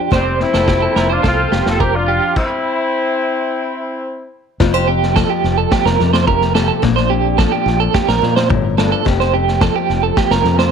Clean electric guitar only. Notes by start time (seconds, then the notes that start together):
Already playing: G4
0.12 C5
0.54 A4
0.68 G4
0.82 A4
0.96 A#4
1.10 C5
1.23 A4
1.52 G4
1.80 A#4
2.08 G4
4.74 C5
4.88 G4
5.16 A4
5.30 G4
5.58 A4
5.72 G4
5.86 A#4
6.13 C5
6.27 A#4
6.55 A4
6.68 A4
6.96 C5
7.10 G4
7.38 A4
7.52 G4
7.80 A4
7.94 G4
8.08 A#4
8.36 C5
8.50 muted clean electric guitar stroke
8.78 A4
8.92 A4
9.20 C5
9.34 G4
9.62 A4
9.76 G4
10.03 A4
10.17 G4
10.31 A#4
10.59 C5